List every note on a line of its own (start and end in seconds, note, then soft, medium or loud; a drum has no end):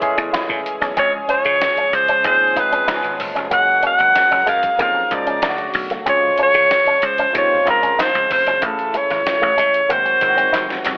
0.00 0.93 C#3 medium
0.00 0.99 E3 medium
0.00 0.01 G#3 medium
0.00 0.65 G#3 medium
0.00 0.02 A3 medium
0.00 0.66 A3 medium
0.00 0.03 C#4 medium
0.00 0.95 C#4 medium
0.00 0.66 C#4 medium
0.00 0.35 E4 loud
0.00 0.95 E4 medium
0.00 0.03 G#4 loud
0.00 5.40 G#4 medium
0.00 0.66 G#4 medium
0.00 kick medium
0.00 closed hi-hat medium
0.17 0.29 E2 medium
0.17 0.28 C#4 medium
0.17 closed hi-hat medium
0.33 0.43 E4 medium
0.33 snare loud
0.33 closed hi-hat loud
0.49 0.60 A2 loud
0.49 muted clean electric guitar stroke soft
0.49 kick loud
0.66 closed hi-hat medium
0.81 0.92 B1 medium
0.81 0.91 C#4 medium
0.81 snare soft
0.81 closed hi-hat medium
0.96 1.19 C#2 loud
0.96 3.50 C#3 medium
0.96 1.82 F3 medium
0.96 1.82 G#3 medium
0.96 2.86 G#3 medium
0.96 1.07 C4 medium
0.96 1.82 C#4 medium
0.96 3.49 F4 medium
0.96 1.82 G#4 medium
0.96 1.13 C#5 loud
0.96 kick loud
0.96 closed hi-hat medium
1.28 1.39 C#4 medium
1.28 1.96 C#5 loud
1.28 closed hi-hat medium
1.45 1.67 C#3 loud
1.45 muted clean electric guitar stroke soft
1.45 closed hi-hat soft
1.61 snare medium
1.61 closed hi-hat medium
1.77 1.88 C#4 medium
1.77 closed hi-hat soft
1.93 2.25 C#2 medium
1.93 2.25 C5 loud
1.93 muted clean electric guitar stroke soft
1.93 closed hi-hat medium
2.08 2.19 C#4 medium
2.08 closed hi-hat medium
2.24 2.56 D#2 loud
2.24 2.45 F3 medium
2.24 2.45 G#3 medium
2.24 2.46 C4 medium
2.24 2.46 C#4 medium
2.24 2.46 G#4 medium
2.24 2.61 C5 loud
2.24 muted clean electric guitar stroke soft
2.24 kick loud
2.24 closed hi-hat loud
2.56 2.78 C#2 medium
2.56 2.87 F3 medium
2.56 2.87 G#3 medium
2.56 2.88 C4 medium
2.56 2.88 C#4 medium
2.56 2.67 D#4 medium
2.56 2.88 G#4 medium
2.56 3.22 B4 medium
2.56 kick medium
2.56 closed hi-hat medium
2.72 2.83 C#4 medium
2.72 closed hi-hat medium
2.88 2.99 C#2 medium
2.88 3.39 F3 medium
2.88 3.39 G#3 medium
2.88 3.52 B3 medium
2.88 3.40 B3 medium
2.88 3.40 C#4 medium
2.88 2.98 D#4 medium
2.88 2.96 G4 medium
2.88 snare loud
2.88 closed hi-hat medium
2.97 3.43 G#4 medium
3.02 3.14 G#1 medium
3.02 closed hi-hat soft
3.19 3.31 F#1 medium
3.19 muted clean electric guitar stroke soft
3.19 kick medium
3.19 open hi-hat medium
3.35 3.47 F1 medium
3.35 3.46 C#4 medium
3.35 snare soft
3.35 closed hi-hat medium
3.51 3.85 F#1 loud
3.51 4.37 F#3 medium
3.51 5.41 G#3 medium
3.51 4.37 G#3 medium
3.51 3.62 A#3 loud
3.51 4.37 A#3 medium
3.51 5.41 A#3 medium
3.51 4.37 C#4 medium
3.51 4.37 F#4 medium
3.51 5.41 A#4 medium
3.51 3.82 F#5 loud
3.51 kick loud
3.51 closed hi-hat loud
3.83 3.93 C#4 medium
3.83 4.45 F#5 loud
3.83 closed hi-hat medium
3.99 4.11 G#1 loud
3.99 muted clean electric guitar stroke soft
3.99 closed hi-hat soft
4.15 muted clean electric guitar stroke soft
4.15 snare loud
4.15 closed hi-hat medium
4.31 4.43 F#1 medium
4.31 4.42 C#4 medium
4.31 closed hi-hat soft
4.46 4.69 F#2 medium
4.46 4.57 G#3 medium
4.46 4.78 F5 loud
4.46 closed hi-hat medium
4.63 kick medium
4.63 closed hi-hat medium
4.78 5.02 F2 medium
4.78 5.00 F3 medium
4.78 5.00 G#3 medium
4.78 4.89 A#3 loud
4.78 5.01 A#3 medium
4.78 5.01 C#4 medium
4.78 5.01 D#4 medium
4.78 5.16 F5 loud
4.78 kick loud
4.78 closed hi-hat loud
4.95 muted clean electric guitar stroke soft
5.11 5.43 C#2 medium
5.11 5.41 C#3 medium
5.11 5.43 F3 medium
5.11 5.43 G#3 medium
5.11 5.43 A#3 medium
5.11 5.43 D#4 medium
5.11 5.77 D5 medium
5.11 kick loud
5.11 closed hi-hat medium
5.26 5.37 C#4 medium
5.26 closed hi-hat medium
5.41 5.65 D2 medium
5.41 5.93 C#3 medium
5.41 5.93 D3 medium
5.41 5.93 F#3 medium
5.41 6.07 F#3 medium
5.41 5.93 A3 medium
5.41 6.06 A3 medium
5.41 5.53 D4 medium
5.41 5.49 E4 medium
5.41 6.07 F#4 medium
5.41 snare loud
5.41 closed hi-hat loud
5.49 5.97 F#4 medium
5.58 muted clean electric guitar stroke soft
5.58 closed hi-hat soft
5.74 5.97 B1 medium
5.74 open hi-hat medium
5.90 6.01 A3 medium
5.90 snare soft
5.90 closed hi-hat medium
6.06 6.29 C#2 loud
6.06 6.92 C#3 medium
6.06 8.60 C#3 medium
6.06 6.92 F3 medium
6.06 8.60 G#3 medium
6.06 6.93 G#3 medium
6.06 6.17 C4 medium
6.06 6.93 C#4 medium
6.06 8.60 F4 medium
6.06 6.93 F4 medium
6.06 6.38 C#5 loud
6.06 kick loud
6.06 closed hi-hat loud
6.38 6.49 C#4 medium
6.38 closed hi-hat medium
6.43 7.07 C#5 loud
6.54 6.77 C#3 medium
6.54 muted clean electric guitar stroke soft
6.54 closed hi-hat soft
6.71 snare loud
6.71 closed hi-hat medium
6.86 6.97 C#4 medium
6.86 closed hi-hat soft
7.02 7.25 C#2 medium
7.02 7.36 C5 loud
7.02 muted clean electric guitar stroke soft
7.02 closed hi-hat medium
7.18 7.29 C#4 medium
7.18 closed hi-hat medium
7.33 7.57 D#2 loud
7.33 7.55 C#3 medium
7.33 7.55 F3 medium
7.33 7.56 G#3 medium
7.33 7.55 C4 medium
7.33 7.56 F4 medium
7.33 muted clean electric guitar stroke soft
7.33 kick loud
7.33 closed hi-hat loud
7.38 7.66 C#5 loud
7.65 7.89 C#2 medium
7.65 8.30 C#3 medium
7.65 8.30 F3 medium
7.65 8.30 G#3 medium
7.65 8.30 C4 medium
7.65 7.77 D#4 medium
7.65 8.30 F4 medium
7.65 kick medium
7.65 closed hi-hat medium
7.70 8.02 A#4 loud
7.83 7.93 C#4 medium
7.83 closed hi-hat medium
7.99 8.09 D#4 loud
7.99 8.31 C5 loud
7.99 snare loud
7.99 closed hi-hat loud
8.15 8.26 C#2 medium
8.15 closed hi-hat soft
8.30 8.42 F1 loud
8.30 8.68 C5 medium
8.30 muted clean electric guitar stroke soft
8.30 kick medium
8.30 open hi-hat medium
8.46 8.57 F#1 medium
8.46 8.57 C#4 medium
8.46 snare soft
8.46 closed hi-hat medium
8.61 8.95 A1 loud
8.61 9.47 C#3 medium
8.61 9.88 C#3 medium
8.61 9.47 E3 medium
8.61 9.48 A3 medium
8.61 9.89 A3 medium
8.61 8.73 A3 loud
8.61 9.48 E4 medium
8.61 9.89 E4 medium
8.61 kick loud
8.61 closed hi-hat loud
8.66 8.98 A4 medium
8.79 closed hi-hat soft
8.94 9.04 G#3 medium
8.94 9.94 C#5 loud
8.94 closed hi-hat medium
9.10 9.21 G#1 medium
9.10 muted clean electric guitar stroke soft
9.10 snare soft
9.10 closed hi-hat soft
9.26 muted clean electric guitar stroke soft
9.26 snare loud
9.26 closed hi-hat medium
9.42 9.53 A1 medium
9.42 9.52 A3 medium
9.58 9.81 A2 loud
9.58 9.68 G#3 medium
9.58 closed hi-hat medium
9.74 closed hi-hat medium
9.89 10.12 G#1 loud
9.89 10.97 C3 medium
9.89 10.11 D#3 medium
9.89 10.11 F#3 medium
9.89 10.97 F#3 medium
9.89 10.11 G#3 medium
9.89 10.00 A#3 medium
9.89 10.11 C4 medium
9.89 10.97 D#4 medium
9.89 10.11 F#4 medium
9.89 10.87 C5 loud
9.89 kick loud
9.89 closed hi-hat loud
10.05 muted clean electric guitar stroke soft
10.05 closed hi-hat soft
10.21 10.44 G#1 medium
10.21 10.85 D#3 medium
10.21 10.86 F#3 medium
10.21 10.86 G#3 medium
10.21 10.86 C4 medium
10.21 10.28 F4 medium
10.21 kick medium
10.21 closed hi-hat medium
10.29 10.89 F#4 medium
10.36 10.47 C4 medium
10.36 closed hi-hat medium
10.52 10.76 F1 loud
10.52 10.63 D#4 medium
10.52 snare medium
10.52 closed hi-hat loud
10.69 muted clean electric guitar stroke soft
10.69 snare medium
10.85 10.97 C2 medium
10.85 snare medium
10.85 closed hi-hat medium